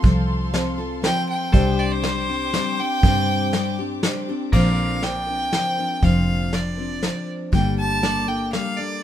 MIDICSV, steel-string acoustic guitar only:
0, 0, Header, 1, 2, 480
1, 0, Start_track
1, 0, Key_signature, -2, "major"
1, 0, Tempo, 499168
1, 45, Time_signature, 3, 2, 24, 8
1, 8685, End_track
2, 0, Start_track
2, 0, Title_t, "Steel-string acoustic guitar"
2, 0, Program_c, 0, 25
2, 23, Note_on_c, 0, 53, 83
2, 33, Note_on_c, 0, 60, 87
2, 36, Note_on_c, 0, 65, 101
2, 39, Note_on_c, 0, 69, 95
2, 498, Note_off_c, 0, 53, 0
2, 510, Note_on_c, 0, 53, 70
2, 513, Note_off_c, 0, 60, 0
2, 514, Note_off_c, 0, 65, 0
2, 515, Note_off_c, 0, 69, 0
2, 517, Note_on_c, 0, 60, 72
2, 525, Note_on_c, 0, 65, 74
2, 527, Note_on_c, 0, 69, 78
2, 738, Note_off_c, 0, 69, 0
2, 750, Note_off_c, 0, 65, 0
2, 750, Note_on_c, 0, 69, 59
2, 757, Note_off_c, 0, 53, 0
2, 759, Note_off_c, 0, 60, 0
2, 762, Note_on_c, 0, 65, 53
2, 770, Note_on_c, 0, 60, 45
2, 979, Note_off_c, 0, 60, 0
2, 981, Note_on_c, 0, 53, 55
2, 985, Note_off_c, 0, 65, 0
2, 991, Note_on_c, 0, 60, 66
2, 992, Note_off_c, 0, 69, 0
2, 997, Note_on_c, 0, 65, 61
2, 1003, Note_on_c, 0, 69, 64
2, 1462, Note_off_c, 0, 53, 0
2, 1463, Note_off_c, 0, 60, 0
2, 1463, Note_on_c, 0, 48, 74
2, 1466, Note_off_c, 0, 65, 0
2, 1466, Note_on_c, 0, 55, 78
2, 1467, Note_on_c, 0, 60, 76
2, 1470, Note_on_c, 0, 62, 90
2, 1472, Note_off_c, 0, 69, 0
2, 1476, Note_on_c, 0, 67, 88
2, 1931, Note_off_c, 0, 55, 0
2, 1943, Note_on_c, 0, 55, 65
2, 1948, Note_off_c, 0, 60, 0
2, 1952, Note_off_c, 0, 67, 0
2, 1952, Note_on_c, 0, 60, 60
2, 1953, Note_off_c, 0, 48, 0
2, 1956, Note_off_c, 0, 62, 0
2, 1960, Note_on_c, 0, 62, 70
2, 1964, Note_on_c, 0, 67, 73
2, 2185, Note_off_c, 0, 67, 0
2, 2192, Note_off_c, 0, 55, 0
2, 2193, Note_off_c, 0, 62, 0
2, 2196, Note_on_c, 0, 67, 50
2, 2197, Note_off_c, 0, 60, 0
2, 2205, Note_on_c, 0, 62, 52
2, 2214, Note_on_c, 0, 60, 42
2, 2434, Note_off_c, 0, 60, 0
2, 2439, Note_off_c, 0, 67, 0
2, 2439, Note_on_c, 0, 55, 71
2, 2441, Note_off_c, 0, 62, 0
2, 2445, Note_on_c, 0, 60, 69
2, 2452, Note_on_c, 0, 62, 77
2, 2456, Note_on_c, 0, 67, 71
2, 2663, Note_off_c, 0, 67, 0
2, 2675, Note_on_c, 0, 67, 54
2, 2676, Note_off_c, 0, 62, 0
2, 2680, Note_off_c, 0, 55, 0
2, 2683, Note_off_c, 0, 60, 0
2, 2687, Note_on_c, 0, 62, 47
2, 2694, Note_on_c, 0, 60, 44
2, 2916, Note_off_c, 0, 60, 0
2, 2918, Note_off_c, 0, 67, 0
2, 2919, Note_on_c, 0, 48, 71
2, 2920, Note_off_c, 0, 62, 0
2, 2923, Note_on_c, 0, 55, 91
2, 2927, Note_on_c, 0, 60, 82
2, 2931, Note_on_c, 0, 62, 84
2, 2932, Note_on_c, 0, 67, 77
2, 3387, Note_off_c, 0, 55, 0
2, 3391, Note_off_c, 0, 60, 0
2, 3393, Note_off_c, 0, 62, 0
2, 3398, Note_on_c, 0, 55, 63
2, 3400, Note_off_c, 0, 48, 0
2, 3403, Note_off_c, 0, 67, 0
2, 3403, Note_on_c, 0, 60, 69
2, 3405, Note_on_c, 0, 62, 73
2, 3414, Note_on_c, 0, 67, 80
2, 3630, Note_off_c, 0, 67, 0
2, 3639, Note_off_c, 0, 55, 0
2, 3642, Note_off_c, 0, 60, 0
2, 3642, Note_on_c, 0, 67, 63
2, 3643, Note_off_c, 0, 62, 0
2, 3656, Note_on_c, 0, 62, 52
2, 3665, Note_on_c, 0, 60, 43
2, 3871, Note_off_c, 0, 60, 0
2, 3874, Note_off_c, 0, 62, 0
2, 3876, Note_on_c, 0, 55, 74
2, 3879, Note_off_c, 0, 67, 0
2, 3882, Note_on_c, 0, 60, 77
2, 3886, Note_on_c, 0, 62, 81
2, 3890, Note_on_c, 0, 67, 78
2, 4109, Note_off_c, 0, 67, 0
2, 4115, Note_off_c, 0, 62, 0
2, 4118, Note_off_c, 0, 55, 0
2, 4120, Note_on_c, 0, 67, 64
2, 4121, Note_off_c, 0, 60, 0
2, 4127, Note_on_c, 0, 62, 56
2, 4139, Note_on_c, 0, 60, 47
2, 4353, Note_off_c, 0, 60, 0
2, 4354, Note_off_c, 0, 62, 0
2, 4357, Note_on_c, 0, 46, 69
2, 4359, Note_on_c, 0, 50, 71
2, 4360, Note_off_c, 0, 67, 0
2, 4361, Note_on_c, 0, 53, 75
2, 4365, Note_on_c, 0, 60, 77
2, 4365, Note_on_c, 0, 62, 83
2, 4371, Note_on_c, 0, 70, 79
2, 4818, Note_off_c, 0, 53, 0
2, 4825, Note_off_c, 0, 60, 0
2, 4830, Note_on_c, 0, 53, 47
2, 4837, Note_on_c, 0, 60, 51
2, 4838, Note_off_c, 0, 46, 0
2, 4840, Note_off_c, 0, 50, 0
2, 4840, Note_off_c, 0, 62, 0
2, 4844, Note_off_c, 0, 70, 0
2, 4844, Note_on_c, 0, 62, 53
2, 4848, Note_on_c, 0, 70, 55
2, 5055, Note_off_c, 0, 70, 0
2, 5064, Note_off_c, 0, 62, 0
2, 5067, Note_on_c, 0, 70, 42
2, 5071, Note_off_c, 0, 60, 0
2, 5075, Note_off_c, 0, 53, 0
2, 5075, Note_on_c, 0, 62, 45
2, 5082, Note_on_c, 0, 60, 37
2, 5085, Note_on_c, 0, 53, 34
2, 5301, Note_off_c, 0, 53, 0
2, 5308, Note_off_c, 0, 60, 0
2, 5312, Note_off_c, 0, 62, 0
2, 5313, Note_on_c, 0, 53, 54
2, 5314, Note_off_c, 0, 70, 0
2, 5319, Note_on_c, 0, 60, 57
2, 5324, Note_on_c, 0, 62, 57
2, 5334, Note_on_c, 0, 70, 61
2, 5547, Note_off_c, 0, 70, 0
2, 5548, Note_off_c, 0, 62, 0
2, 5557, Note_off_c, 0, 53, 0
2, 5558, Note_on_c, 0, 70, 53
2, 5559, Note_on_c, 0, 62, 48
2, 5560, Note_off_c, 0, 60, 0
2, 5571, Note_on_c, 0, 60, 48
2, 5578, Note_on_c, 0, 53, 42
2, 5788, Note_off_c, 0, 53, 0
2, 5793, Note_off_c, 0, 60, 0
2, 5797, Note_off_c, 0, 62, 0
2, 5797, Note_on_c, 0, 46, 67
2, 5798, Note_on_c, 0, 50, 75
2, 5800, Note_off_c, 0, 70, 0
2, 5800, Note_on_c, 0, 53, 76
2, 5804, Note_on_c, 0, 60, 74
2, 5809, Note_on_c, 0, 62, 65
2, 5811, Note_on_c, 0, 70, 73
2, 6267, Note_off_c, 0, 53, 0
2, 6272, Note_off_c, 0, 60, 0
2, 6279, Note_on_c, 0, 53, 53
2, 6280, Note_off_c, 0, 46, 0
2, 6280, Note_off_c, 0, 50, 0
2, 6283, Note_on_c, 0, 60, 59
2, 6288, Note_off_c, 0, 62, 0
2, 6291, Note_off_c, 0, 70, 0
2, 6292, Note_on_c, 0, 62, 55
2, 6295, Note_on_c, 0, 70, 58
2, 6500, Note_off_c, 0, 70, 0
2, 6511, Note_off_c, 0, 62, 0
2, 6512, Note_on_c, 0, 70, 47
2, 6515, Note_off_c, 0, 60, 0
2, 6518, Note_off_c, 0, 53, 0
2, 6523, Note_on_c, 0, 62, 44
2, 6527, Note_on_c, 0, 60, 42
2, 6530, Note_on_c, 0, 53, 41
2, 6736, Note_off_c, 0, 53, 0
2, 6745, Note_off_c, 0, 60, 0
2, 6747, Note_on_c, 0, 53, 54
2, 6750, Note_off_c, 0, 62, 0
2, 6756, Note_on_c, 0, 60, 53
2, 6757, Note_off_c, 0, 70, 0
2, 6761, Note_on_c, 0, 62, 57
2, 6768, Note_on_c, 0, 70, 57
2, 7229, Note_on_c, 0, 43, 69
2, 7232, Note_on_c, 0, 50, 69
2, 7235, Note_off_c, 0, 53, 0
2, 7235, Note_off_c, 0, 60, 0
2, 7239, Note_on_c, 0, 55, 75
2, 7239, Note_on_c, 0, 58, 71
2, 7240, Note_off_c, 0, 62, 0
2, 7243, Note_off_c, 0, 70, 0
2, 7244, Note_on_c, 0, 62, 75
2, 7247, Note_on_c, 0, 69, 74
2, 7700, Note_off_c, 0, 55, 0
2, 7708, Note_off_c, 0, 58, 0
2, 7712, Note_on_c, 0, 55, 51
2, 7717, Note_off_c, 0, 43, 0
2, 7719, Note_off_c, 0, 50, 0
2, 7719, Note_off_c, 0, 62, 0
2, 7720, Note_on_c, 0, 58, 57
2, 7730, Note_off_c, 0, 69, 0
2, 7730, Note_on_c, 0, 62, 57
2, 7733, Note_on_c, 0, 69, 62
2, 7943, Note_off_c, 0, 69, 0
2, 7949, Note_off_c, 0, 62, 0
2, 7955, Note_off_c, 0, 58, 0
2, 7955, Note_on_c, 0, 69, 46
2, 7959, Note_off_c, 0, 55, 0
2, 7960, Note_on_c, 0, 62, 42
2, 7966, Note_on_c, 0, 58, 38
2, 7974, Note_on_c, 0, 55, 40
2, 8194, Note_off_c, 0, 55, 0
2, 8200, Note_off_c, 0, 58, 0
2, 8200, Note_off_c, 0, 69, 0
2, 8203, Note_off_c, 0, 62, 0
2, 8205, Note_on_c, 0, 55, 55
2, 8212, Note_on_c, 0, 58, 53
2, 8218, Note_on_c, 0, 62, 58
2, 8221, Note_on_c, 0, 69, 61
2, 8430, Note_off_c, 0, 69, 0
2, 8439, Note_off_c, 0, 62, 0
2, 8442, Note_on_c, 0, 69, 47
2, 8443, Note_off_c, 0, 58, 0
2, 8446, Note_off_c, 0, 55, 0
2, 8450, Note_on_c, 0, 62, 42
2, 8455, Note_on_c, 0, 58, 43
2, 8460, Note_on_c, 0, 55, 37
2, 8679, Note_off_c, 0, 55, 0
2, 8682, Note_off_c, 0, 58, 0
2, 8683, Note_off_c, 0, 62, 0
2, 8685, Note_off_c, 0, 69, 0
2, 8685, End_track
0, 0, End_of_file